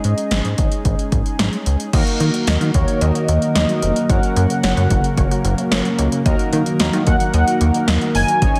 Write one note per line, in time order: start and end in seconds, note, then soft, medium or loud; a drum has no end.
0.00 1.89 G#3 medium
0.00 1.89 C#4 medium
0.00 1.89 D#4 medium
0.00 1.89 G#4 medium
0.00 1.66 D#5 medium
0.04 0.14 G#2 loud
0.04 closed hi-hat medium
0.18 closed hi-hat soft
0.31 0.41 G#1 loud
0.31 snare loud
0.31 closed hi-hat medium
0.45 0.55 G#2 medium
0.45 closed hi-hat medium
0.58 0.68 G#1 loud
0.58 kick medium
0.58 closed hi-hat medium
0.72 closed hi-hat medium
0.85 0.95 G#1 loud
0.85 kick medium
0.85 closed hi-hat medium
0.99 closed hi-hat medium
1.12 1.22 G#1 medium
1.12 kick loud
1.12 closed hi-hat medium
1.26 closed hi-hat soft
1.39 1.49 G#1 medium
1.39 snare loud
1.39 closed hi-hat medium
1.53 closed hi-hat soft
1.66 1.76 C#2 medium
1.66 closed hi-hat medium
1.80 closed hi-hat medium
1.93 2.03 D#2 loud
1.93 4.08 D#3 medium
1.93 8.38 F#3 medium
1.93 8.38 A#3 medium
1.93 4.06 A#3 medium
1.93 4.06 D#4 medium
1.93 4.06 F#4 medium
1.93 4.06 A#4 medium
1.93 2.04 D#5 loud
1.93 kick loud
1.93 closed hi-hat medium
1.93 crash medium
2.07 closed hi-hat soft
2.20 2.30 D#3 medium
2.20 2.31 A#3 medium
2.20 closed hi-hat medium
2.34 2.44 D#3 medium
2.34 closed hi-hat medium
2.47 2.57 D#2 loud
2.47 2.58 D#5 medium
2.47 snare loud
2.47 closed hi-hat medium
2.61 2.71 D#3 loud
2.61 2.71 F#4 medium
2.61 closed hi-hat medium
2.74 2.85 D#2 medium
2.74 2.85 A#3 medium
2.74 3.03 C#5 medium
2.74 kick medium
2.74 closed hi-hat medium
2.88 2.98 D#3 medium
2.88 closed hi-hat medium
3.01 3.11 D#2 loud
3.01 3.55 D#5 loud
3.01 3.12 D#5 medium
3.01 closed hi-hat medium
3.15 3.25 F#4 medium
3.15 closed hi-hat medium
3.28 3.38 D#2 loud
3.28 3.39 A#3 medium
3.28 closed hi-hat medium
3.42 3.52 D#3 medium
3.42 closed hi-hat soft
3.55 3.65 D#2 loud
3.55 4.06 D#5 loud
3.55 3.66 D#5 medium
3.55 snare loud
3.55 closed hi-hat medium
3.69 3.80 F#4 medium
3.69 closed hi-hat soft
3.82 3.92 F1 medium
3.82 3.93 A#3 medium
3.82 closed hi-hat medium
3.96 4.07 D#3 medium
3.96 closed hi-hat medium
4.10 4.20 F#1 loud
4.10 6.24 C#3 medium
4.10 6.22 A#3 medium
4.10 6.22 C#4 medium
4.10 6.22 F#4 medium
4.10 6.22 A#4 medium
4.10 4.20 C#5 loud
4.10 5.95 F#5 loud
4.10 kick loud
4.10 closed hi-hat medium
4.23 closed hi-hat soft
4.36 4.47 F#2 loud
4.36 4.47 A#3 medium
4.36 closed hi-hat medium
4.50 4.61 C#3 medium
4.50 closed hi-hat medium
4.63 4.74 F#1 loud
4.63 4.74 C#5 medium
4.63 snare loud
4.63 closed hi-hat medium
4.77 4.87 F#2 loud
4.77 4.88 F#4 medium
4.77 closed hi-hat medium
4.90 5.01 F#1 loud
4.90 5.01 A#3 medium
4.90 kick medium
4.90 closed hi-hat medium
5.04 5.15 C#3 medium
5.04 closed hi-hat medium
5.17 5.28 F#1 loud
5.17 5.28 C#5 medium
5.17 kick medium
5.17 closed hi-hat medium
5.31 5.42 F#4 medium
5.31 closed hi-hat medium
5.45 5.55 F#1 loud
5.45 5.55 A#3 medium
5.45 closed hi-hat medium
5.58 5.69 C#3 medium
5.58 closed hi-hat soft
5.72 5.82 F#1 loud
5.72 5.82 C#5 medium
5.72 snare loud
5.72 closed hi-hat medium
5.85 5.96 F#4 medium
5.85 closed hi-hat soft
5.99 6.09 C#2 medium
5.99 6.09 A#3 medium
5.99 closed hi-hat medium
6.12 6.23 C#3 medium
6.12 closed hi-hat medium
6.26 6.36 D#2 loud
6.26 8.60 D#3 medium
6.26 8.38 A#3 medium
6.26 8.38 D#4 medium
6.26 8.38 F#4 medium
6.26 8.38 A#4 medium
6.26 6.36 D#5 loud
6.26 kick loud
6.26 closed hi-hat medium
6.39 closed hi-hat soft
6.53 6.63 D#3 loud
6.53 6.63 A#3 medium
6.53 closed hi-hat medium
6.66 6.77 D#3 medium
6.66 closed hi-hat medium
6.80 6.90 D#2 loud
6.80 6.90 D#5 medium
6.80 snare loud
6.80 closed hi-hat medium
6.93 7.03 D#3 loud
6.93 7.04 F#4 medium
6.93 closed hi-hat medium
7.07 7.17 D#2 loud
7.07 7.17 A#3 medium
7.07 7.32 F#5 loud
7.07 kick medium
7.07 closed hi-hat medium
7.20 7.31 D#3 medium
7.20 closed hi-hat medium
7.34 7.44 D#2 loud
7.34 7.44 D#5 medium
7.34 7.84 F#5 loud
7.34 closed hi-hat medium
7.48 7.58 F#4 medium
7.48 closed hi-hat medium
7.61 7.71 D#2 loud
7.61 7.71 A#3 medium
7.61 closed hi-hat medium
7.74 7.85 D#3 medium
7.74 closed hi-hat soft
7.88 7.98 D#2 loud
7.88 7.98 D#5 medium
7.88 snare loud
7.88 closed hi-hat medium
8.01 8.12 F#4 medium
8.01 closed hi-hat soft
8.15 8.25 F#1 medium
8.15 8.25 A#3 medium
8.15 8.60 G#5 loud
8.15 open hi-hat medium
8.28 8.39 D#3 medium
8.28 closed hi-hat medium
8.42 8.52 G#1 loud
8.42 8.60 G#3 medium
8.42 8.60 C#4 medium
8.42 8.60 D#4 medium
8.42 8.60 G#4 medium
8.42 8.60 C#5 medium
8.42 8.52 D#5 loud
8.42 kick loud
8.42 closed hi-hat medium
8.56 closed hi-hat medium